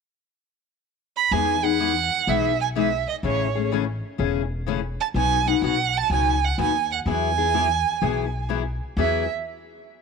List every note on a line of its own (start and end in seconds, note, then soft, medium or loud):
1.17 1.34 B5 medium
1.31 2.08 E2 medium
1.31 1.55 E3 medium
1.31 1.55 G#3 medium
1.31 1.55 B3 medium
1.31 1.55 D#4 medium
1.31 1.55 G#4 medium
1.31 1.66 G#5 medium
1.63 1.79 B3 soft
1.63 1.79 D#4 soft
1.63 1.79 G#4 medium
1.63 2.30 F#5 loud
1.80 1.92 E3 medium
1.80 1.92 G#3 medium
1.80 1.92 B3 medium
1.80 1.92 D#4 medium
1.80 1.92 G#4 medium
2.27 3.04 B1 medium
2.27 2.50 E3 medium
2.27 2.50 G#3 medium
2.27 2.50 B3 medium
2.27 2.50 D#4 medium
2.27 2.50 G#4 medium
2.27 2.60 E5 medium
2.61 2.68 G#5 medium
2.75 2.87 E3 medium
2.75 2.88 G#3 medium
2.75 2.88 B3 medium
2.75 2.88 D#4 medium
2.75 2.88 G#4 medium
2.75 3.06 E5 medium
3.08 3.16 D#5 medium
3.23 4.00 A1 medium
3.23 3.45 C#3 medium
3.23 3.46 E3 medium
3.23 3.46 A3 medium
3.23 3.46 C#4 medium
3.23 3.46 G#4 medium
3.23 3.69 C#5 medium
3.55 3.71 A3 soft
3.55 3.72 C#4 soft
3.55 3.71 G#4 medium
3.72 3.83 C#3 medium
3.72 3.83 E3 medium
3.72 3.83 A3 medium
3.72 3.84 C#4 medium
3.72 3.84 G#4 medium
4.18 4.95 E1 medium
4.18 4.41 C#3 medium
4.18 4.41 E3 medium
4.18 4.41 A3 medium
4.18 4.41 C#4 medium
4.18 4.41 G#4 medium
4.67 4.79 C#3 medium
4.67 4.79 E3 medium
4.67 4.79 A3 medium
4.67 4.79 C#4 medium
4.67 4.79 G#4 medium
5.01 5.07 A5 medium
5.14 5.53 B1 medium
5.14 5.37 B2 medium
5.14 5.37 F#3 medium
5.14 5.38 B3 medium
5.14 5.38 D#4 medium
5.14 5.38 F#4 medium
5.14 5.49 G#5 loud
5.45 5.62 B3 soft
5.45 5.62 D#4 soft
5.45 5.62 F#4 medium
5.45 5.63 F#5 medium
5.62 6.03 B1 medium
5.62 5.74 B2 medium
5.62 5.75 F#3 medium
5.62 5.75 B3 medium
5.62 5.75 D#4 medium
5.62 5.75 F#4 medium
5.62 5.99 F#5 loud
5.97 6.12 A5 loud
6.10 6.51 C#2 medium
6.10 6.33 B2 medium
6.10 6.33 F#3 medium
6.10 6.33 B3 medium
6.10 6.34 D#4 medium
6.10 6.34 F#4 medium
6.10 6.46 G#5 medium
6.44 6.60 F#5 medium
6.58 6.99 D#2 medium
6.58 6.70 B2 medium
6.58 6.70 F#3 medium
6.58 6.70 B3 medium
6.58 6.71 D#4 medium
6.58 6.71 F#4 medium
6.58 6.89 G#5 medium
6.92 6.99 F#5 medium
7.06 7.82 E2 medium
7.06 7.28 E3 medium
7.06 7.29 F#3 medium
7.06 7.29 B3 medium
7.06 7.29 E4 medium
7.06 7.29 G#4 medium
7.06 8.47 G#5 loud
7.38 7.53 B3 soft
7.38 7.54 E4 medium
7.38 7.54 G#4 medium
7.54 7.66 E3 medium
7.54 7.66 F#3 medium
7.54 7.66 B3 medium
7.54 7.66 E4 medium
7.54 7.66 G#4 medium
8.02 8.78 B1 medium
8.02 8.24 E3 medium
8.02 8.24 F#3 medium
8.02 8.24 B3 medium
8.02 8.24 E4 medium
8.02 8.24 G#4 medium
8.49 8.61 E3 medium
8.49 8.61 F#3 medium
8.49 8.62 B3 medium
8.49 8.62 E4 medium
8.49 8.62 G#4 medium
8.97 9.26 E2 medium
8.97 9.22 E3 medium
8.97 9.23 F#3 medium
8.97 9.23 B3 medium
8.97 9.23 E4 medium
8.97 9.23 G#4 medium
8.97 9.27 E5 medium